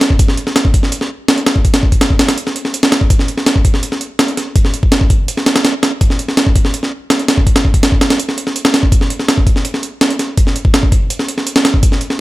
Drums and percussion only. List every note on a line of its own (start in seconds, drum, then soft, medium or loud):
0.01 snare loud
0.01 closed hi-hat medium
0.10 kick medium
0.19 kick loud
0.19 closed hi-hat medium
0.28 snare soft
0.37 closed hi-hat medium
0.47 snare soft
0.56 snare loud
0.56 closed hi-hat medium
0.65 kick medium
0.74 kick loud
0.74 closed hi-hat medium
0.83 snare soft
0.92 closed hi-hat medium
1.01 snare soft
1.28 snare loud
1.28 closed hi-hat medium
1.37 closed hi-hat soft
1.46 snare loud
1.46 closed hi-hat medium
1.56 kick medium
1.65 kick medium
1.65 closed hi-hat medium
1.74 snare loud
1.74 closed hi-hat medium
1.83 kick medium
1.92 kick medium
1.92 closed hi-hat medium
2.01 snare loud
2.01 closed hi-hat medium
2.10 kick medium
2.19 snare loud
2.19 closed hi-hat medium
2.29 snare loud
2.29 closed hi-hat medium
2.38 closed hi-hat medium
2.47 snare soft
2.56 closed hi-hat medium
2.65 snare soft
2.74 closed hi-hat medium
2.83 snare loud
2.92 snare loud
2.92 closed hi-hat medium
3.01 kick medium
3.10 kick loud
3.10 closed hi-hat medium
3.19 snare soft
3.28 closed hi-hat medium
3.38 snare soft
3.46 snare loud
3.46 closed hi-hat medium
3.56 kick medium
3.65 kick medium
3.65 closed hi-hat medium
3.74 snare soft
3.83 closed hi-hat medium
3.92 snare soft
4.01 closed hi-hat medium
4.19 snare loud
4.19 closed hi-hat medium
4.28 closed hi-hat soft
4.37 snare soft
4.37 closed hi-hat medium
4.56 kick loud
4.56 closed hi-hat medium
4.65 snare soft
4.74 closed hi-hat medium
4.83 kick loud
4.92 snare loud
4.92 closed hi-hat medium
5.01 kick loud
5.10 kick loud
5.10 closed hi-hat medium
5.28 closed hi-hat medium
5.37 snare soft
5.46 snare loud
5.46 closed hi-hat medium
5.56 snare loud
5.56 closed hi-hat medium
5.65 snare loud
5.65 closed hi-hat medium
5.83 snare loud
5.83 closed hi-hat medium
6.01 kick loud
6.01 closed hi-hat medium
6.10 snare soft
6.19 closed hi-hat medium
6.28 snare soft
6.37 snare loud
6.37 closed hi-hat medium
6.47 kick medium
6.56 kick loud
6.56 closed hi-hat medium
6.65 snare soft
6.74 closed hi-hat medium
6.83 snare soft
7.10 snare loud
7.10 closed hi-hat medium
7.19 closed hi-hat soft
7.28 snare loud
7.28 closed hi-hat medium
7.38 kick medium
7.47 kick medium
7.47 closed hi-hat medium
7.56 snare loud
7.56 closed hi-hat medium
7.65 kick medium
7.74 kick medium
7.74 closed hi-hat medium
7.83 snare loud
7.83 closed hi-hat medium
7.92 kick medium
8.01 snare loud
8.01 closed hi-hat medium
8.10 snare loud
8.10 closed hi-hat medium
8.19 closed hi-hat medium
8.29 snare soft
8.38 closed hi-hat medium
8.47 snare soft
8.56 closed hi-hat medium
8.65 snare loud
8.74 snare loud
8.74 closed hi-hat medium
8.83 kick medium
8.92 kick loud
8.92 closed hi-hat medium
9.01 snare soft
9.10 closed hi-hat medium
9.20 snare soft
9.28 snare loud
9.28 closed hi-hat medium
9.38 kick medium
9.47 kick loud
9.47 closed hi-hat medium
9.56 snare soft
9.65 closed hi-hat medium
9.74 snare soft
9.83 closed hi-hat medium
10.01 snare loud
10.01 closed hi-hat medium
10.10 closed hi-hat soft
10.19 snare soft
10.19 closed hi-hat medium
10.37 kick loud
10.37 closed hi-hat medium
10.47 snare soft
10.56 closed hi-hat medium
10.65 kick loud
10.74 snare loud
10.74 closed hi-hat medium
10.83 kick medium
10.92 kick medium
10.92 closed hi-hat medium
11.10 closed hi-hat medium
11.19 snare soft
11.28 closed hi-hat medium
11.38 snare soft
11.47 closed hi-hat medium
11.56 snare loud
11.65 snare loud
11.65 closed hi-hat medium
11.74 kick medium
11.83 kick loud
11.83 closed hi-hat medium
11.92 snare soft
12.01 closed hi-hat medium
12.10 snare soft